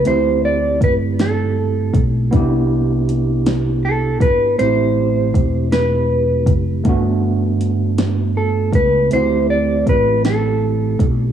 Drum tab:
HH |x-xx-x|x-xx-x|x-xx-x|x-xx-x|
SD |---o--|---o--|---o--|---o--|
BD |--o--o|o----o|--o--o|o----o|

HH |x-xx-x|
SD |---o--|
BD |--o--o|